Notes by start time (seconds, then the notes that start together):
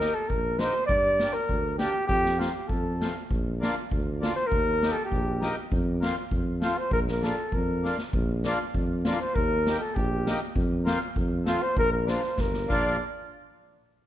Already playing: A#4
0.00 A#3 D#4 G4, snare
0.14 A4
0.28 A#1 A#4, kick
0.59 A#3 D#4 G4 C5, snare
0.86 G2 D5, kick
1.19 A#3 D4 G4, snare
1.33 A#4
1.49 D2, kick
1.78 A#3 D4 G4, snare
2.07 F2 G4, kick
2.25 snare
2.37 A#3 C4 F4, snare
2.54 G4
2.68 F2 A4, kick
3.00 A3 C4 F4, snare
3.31 A#1, kick
3.60 A#3 D4 F4, snare
3.91 D2, kick
4.20 A#3 D4 F4, snare
4.35 C5
4.46 A#4
4.52 D#2, kick
4.83 A#3 D#4 G4, snare
4.92 A4
5.05 G4
5.12 A#1, kick
5.40 A#3 D#4 G4, snare
5.72 F2, kick
6.00 A#3 C4 F4, snare
6.31 F2, kick
6.61 A3 C4 F4, snare
6.78 C5
6.91 A#1 A#4, kick
7.08 A#4, snare
7.21 A#3 D4 F4 A4, snare
7.52 F2 A#4, kick
7.82 A#3 D4 F4, snare
7.98 snare
8.13 A#1, kick
8.44 A#3 D4 F4, snare, hi-hat pedal
8.74 F2, kick
9.05 A#3 D4 F4, snare, hi-hat pedal
9.20 C5
9.34 D#2 A#4, kick
9.67 A#3 D#4 G4, snare, hi-hat pedal
9.79 A4
9.95 A#1 G4, kick
10.26 A#3 D#4 G4, snare, hi-hat pedal
10.56 F2, kick
10.84 A#3 C4 F4, snare, hi-hat pedal
11.16 F2, kick
11.45 A3 C4 F4, snare, hi-hat pedal
11.62 C5
11.77 A#1 A#4, kick
11.92 A#4
12.06 A#3 D4 F4 C5, snare, hi-hat pedal
12.24 snare
12.37 G1 A#4, kick, snare
12.53 snare
12.68 A#1 A#3 D4 F4 D5, kick, crash